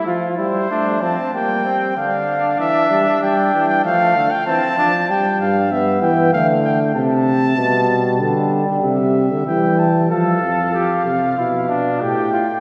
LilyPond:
<<
  \new Staff \with { instrumentName = "Trumpet" } { \time 4/4 \key f \major \tempo 4 = 95 r8 c''4 a''8 g''4 f''4 | e''4 g''8. g''16 f''8. g''16 a''4 | g''8 f''8 e''8 g''8 f''8 g''8 a''4~ | a''4. r8 e''4 g''8 a''8 |
f''2. g''4 | }
  \new Staff \with { instrumentName = "Flugelhorn" } { \time 4/4 \key f \major f'8 e'8 d'8 c'8 bes8 c'8 d'4~ | d'2 a4 c'8 d'8 | r1 | r1 |
a'4 g'8 f'8 e'8 d'8 g'8 f'8 | }
  \new Staff \with { instrumentName = "Euphonium" } { \clef bass \time 4/4 \key f \major f8 g8 a8 f8 g4 d4 | e8 g8 g8 e8 f8 d8 e8 f8 | g4 b4 a4. r8 | g2. g4 |
r1 | }
  \new Staff \with { instrumentName = "Bass trombone" } { \clef bass \time 4/4 \key f \major r1 | r1 | r8 g,4 e8 d4 c4 | b,4 d8. d16 c8. d16 e4 |
f8 f,4 c8 b,4 a,4 | }
>>